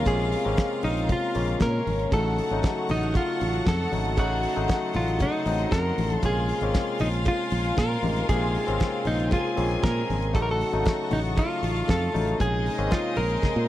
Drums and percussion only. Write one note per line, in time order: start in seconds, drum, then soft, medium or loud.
0.06 kick loud
0.06 closed hi-hat medium
0.06 cowbell medium
0.06 muted conga soft
0.32 open hi-hat medium
0.45 closed hi-hat soft
0.57 kick loud
0.57 snare loud
0.57 closed hi-hat medium
0.57 cowbell medium
0.57 high conga medium
0.82 open hi-hat medium
0.82 muted conga medium
0.82 low conga medium
0.97 closed hi-hat soft
1.09 kick medium
1.09 closed hi-hat medium
1.09 cowbell medium
1.09 muted conga medium
1.09 low conga medium
1.35 open hi-hat medium
1.35 muted conga medium
1.48 closed hi-hat soft
1.60 kick loud
1.60 snare loud
1.60 closed hi-hat medium
1.60 cowbell medium
1.60 high conga medium
1.87 open hi-hat medium
1.87 high conga medium
1.99 closed hi-hat soft
2.12 kick loud
2.12 closed hi-hat medium
2.12 cowbell medium
2.12 muted conga soft
2.38 open hi-hat medium
2.50 closed hi-hat soft
2.63 kick loud
2.63 snare loud
2.63 closed hi-hat medium
2.63 cowbell medium
2.63 high conga medium
2.89 open hi-hat medium
2.89 muted conga medium
2.89 low conga medium
3.03 closed hi-hat soft
3.14 kick loud
3.14 closed hi-hat medium
3.14 cowbell medium
3.14 muted conga medium
3.40 open hi-hat medium
3.40 muted conga medium
3.53 closed hi-hat soft
3.66 kick loud
3.66 snare loud
3.66 closed hi-hat medium
3.66 cowbell medium
3.66 high conga medium
3.92 open hi-hat medium
3.92 high conga medium
4.05 closed hi-hat soft
4.17 kick loud
4.17 closed hi-hat medium
4.17 cowbell medium
4.43 open hi-hat medium
4.56 closed hi-hat soft
4.68 kick loud
4.68 snare loud
4.68 closed hi-hat medium
4.68 cowbell medium
4.68 high conga medium
4.94 open hi-hat medium
4.94 muted conga medium
4.94 low conga medium
5.08 closed hi-hat medium
5.19 kick loud
5.19 closed hi-hat medium
5.19 cowbell medium
5.19 muted conga medium
5.19 low conga medium
5.46 open hi-hat medium
5.46 muted conga medium
5.59 closed hi-hat soft
5.71 kick loud
5.71 snare loud
5.71 closed hi-hat medium
5.71 cowbell medium
5.71 high conga medium
5.98 open hi-hat medium
5.98 high conga medium
6.10 closed hi-hat soft
6.10 high conga medium
6.22 kick medium
6.22 closed hi-hat medium
6.22 cowbell medium
6.22 muted conga soft
6.49 open hi-hat medium
6.61 closed hi-hat soft
6.74 kick loud
6.74 snare loud
6.74 closed hi-hat medium
6.74 cowbell medium
6.74 high conga medium
6.99 open hi-hat medium
6.99 muted conga medium
6.99 low conga medium
7.13 closed hi-hat medium
7.25 kick loud
7.25 closed hi-hat medium
7.25 cowbell medium
7.25 muted conga medium
7.50 open hi-hat medium
7.50 muted conga medium
7.64 closed hi-hat soft
7.77 kick loud
7.77 snare loud
7.77 closed hi-hat medium
7.77 cowbell medium
7.77 high conga medium
8.04 open hi-hat medium
8.04 high conga medium
8.16 closed hi-hat soft
8.28 kick loud
8.28 closed hi-hat medium
8.28 cowbell loud
8.28 muted conga soft
8.55 open hi-hat medium
8.67 closed hi-hat soft
8.80 kick loud
8.80 snare loud
8.80 closed hi-hat medium
8.80 cowbell medium
8.80 high conga medium
9.05 open hi-hat medium
9.05 muted conga medium
9.05 low conga medium
9.20 closed hi-hat medium
9.31 kick loud
9.31 closed hi-hat medium
9.31 cowbell medium
9.31 muted conga medium
9.31 low conga medium
9.57 open hi-hat medium
9.57 muted conga medium
9.71 closed hi-hat soft
9.83 kick loud
9.83 snare loud
9.83 closed hi-hat medium
9.83 cowbell medium
9.83 high conga medium
10.10 open hi-hat medium
10.10 high conga medium
10.22 closed hi-hat soft
10.35 kick loud
10.35 closed hi-hat medium
10.35 cowbell medium
10.61 open hi-hat medium
10.73 closed hi-hat soft
10.86 kick loud
10.86 snare loud
10.86 closed hi-hat medium
10.86 cowbell medium
10.86 high conga medium
11.11 open hi-hat medium
11.11 muted conga medium
11.11 low conga medium
11.25 closed hi-hat soft
11.36 kick loud
11.36 closed hi-hat medium
11.36 cowbell medium
11.36 muted conga medium
11.63 open hi-hat medium
11.63 muted conga medium
11.76 closed hi-hat soft
11.88 kick loud
11.88 snare loud
11.88 closed hi-hat medium
11.88 cowbell medium
11.88 high conga medium
12.16 open hi-hat medium
12.16 high conga medium
12.27 closed hi-hat soft
12.40 kick medium
12.40 closed hi-hat medium
12.40 cowbell medium
12.66 open hi-hat medium
12.78 closed hi-hat soft
12.91 kick loud
12.91 snare loud
12.91 closed hi-hat medium
12.91 cowbell medium
12.91 high conga medium
13.16 open hi-hat medium
13.16 muted conga medium
13.16 low conga medium
13.30 closed hi-hat soft
13.42 kick loud
13.42 snare medium
13.42 cowbell medium
13.42 muted conga medium
13.42 low conga medium